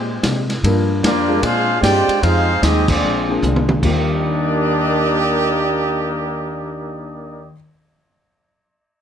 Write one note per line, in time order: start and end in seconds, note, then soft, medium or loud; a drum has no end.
0.00 0.10 A#2 medium
0.00 0.22 A#2 loud
0.00 0.11 G#3 medium
0.00 0.45 G#3 medium
0.00 0.46 G#3 medium
0.00 0.11 C4 medium
0.00 0.46 C4 medium
0.00 0.12 D4 medium
0.00 0.46 G4 medium
0.00 0.46 C5 medium
0.23 0.51 A#2 medium
0.23 0.62 C3 medium
0.23 0.51 G#3 medium
0.23 0.51 C4 medium
0.23 0.52 D4 medium
0.23 kick soft
0.23 snare medium
0.23 hi-hat pedal medium
0.23 ride medium
0.50 snare soft
0.50 ride medium
0.63 1.02 G2 medium
0.63 0.91 G2 medium
0.63 0.92 F3 medium
0.63 1.24 G3 medium
0.63 1.25 A#3 medium
0.63 0.92 A#3 medium
0.63 1.24 D4 medium
0.63 1.25 F4 medium
0.63 1.25 A#4 medium
0.63 kick soft
0.63 ride medium
0.68 0.93 D4 medium
1.02 1.42 F2 medium
1.02 1.30 G2 medium
1.02 1.40 F3 medium
1.02 1.30 F3 medium
1.02 1.40 A#3 medium
1.02 1.30 A#3 medium
1.02 1.41 A#3 medium
1.02 1.39 D4 medium
1.02 1.31 D4 medium
1.02 1.41 F4 medium
1.02 1.41 G4 medium
1.02 1.41 D5 loud
1.02 kick soft
1.02 snare medium
1.02 hi-hat pedal medium
1.02 ride medium
1.28 1.42 G#3 medium
1.28 1.42 C4 medium
1.28 1.42 D4 medium
1.28 1.42 F4 medium
1.28 1.42 A#4 medium
1.40 1.70 A#2 soft
1.40 1.82 A#2 medium
1.40 1.80 G#3 medium
1.40 1.71 G#3 soft
1.40 1.71 C4 medium
1.40 1.80 D4 medium
1.40 1.83 D4 loud
1.40 1.82 F4 medium
1.40 1.83 G#4 loud
1.40 1.80 C5 medium
1.40 1.83 F5 loud
1.40 kick soft
1.40 ride medium
1.46 1.71 D4 medium
1.81 2.07 G2 medium
1.81 2.10 A#2 medium
1.81 2.19 G#3 loud
1.81 2.10 G#3 medium
1.81 2.11 C4 medium
1.81 2.19 D4 loud
1.81 2.19 F4 medium
1.81 2.19 G4 loud
1.81 2.20 C5 medium
1.81 2.20 D5 medium
1.81 2.20 G5 loud
1.81 kick soft
1.81 snare medium
1.81 hi-hat pedal medium
1.81 ride medium
1.85 2.11 D4 medium
2.08 muted upright bass stroke soft
2.08 ride medium
2.20 2.62 F2 medium
2.20 2.50 F3 medium
2.20 2.62 G#3 medium
2.20 2.51 G#3 medium
2.20 2.61 C4 medium
2.20 2.63 D#4 medium
2.20 2.62 F4 medium
2.20 2.62 G#4 loud
2.20 2.63 C5 medium
2.20 2.63 F5 loud
2.20 kick soft
2.20 ride medium
2.24 2.51 D#4 soft
2.24 2.51 G4 medium
2.62 3.02 D#2 medium
2.62 2.90 F3 medium
2.62 2.87 G#3 medium
2.62 2.91 G#3 medium
2.62 2.88 C4 medium
2.62 2.88 D#4 medium
2.62 2.90 D#4 medium
2.62 2.89 G4 medium
2.62 2.91 G4 medium
2.62 2.88 G#4 medium
2.62 2.89 D#5 medium
2.62 kick soft
2.62 snare medium
2.62 hi-hat pedal medium
2.62 ride medium
2.88 3.39 F3 medium
2.88 3.39 G#3 medium
2.88 3.40 C4 medium
2.88 3.39 D4 medium
2.88 3.40 F4 medium
2.88 3.40 G#4 medium
2.88 3.40 D5 medium
2.88 kick medium
2.88 crash medium
3.02 3.42 A#1 medium
3.02 3.29 A#2 soft
3.02 3.31 G#3 soft
3.02 3.31 C4 soft
3.02 3.31 D4 soft
3.29 3.80 A#3 medium
3.29 3.80 C4 medium
3.29 3.81 D4 medium
3.29 3.81 F4 medium
3.29 3.81 G#4 medium
3.42 3.82 C2 medium
3.42 3.70 A#2 medium
3.42 3.71 G#3 medium
3.42 3.71 C4 medium
3.42 3.71 D4 medium
3.42 hi-hat pedal medium
3.42 high tom medium
3.56 high tom medium
3.69 high tom loud
3.79 7.51 D#2 medium
3.79 7.48 D#2 medium
3.79 7.48 D#3 medium
3.79 7.51 D#3 medium
3.79 7.48 D4 loud
3.79 7.47 G4 loud
3.79 kick medium
3.79 crash medium
3.83 7.48 D#3 medium
3.83 7.54 G3 medium
3.83 7.48 A#3 medium
3.83 7.52 A#3 medium
3.83 7.50 A#3 medium
3.83 7.54 F4 medium
3.83 7.54 G4 medium
3.83 7.51 G4 loud
3.83 7.51 D5 medium
3.83 7.50 D#5 medium
3.90 7.59 A#3 medium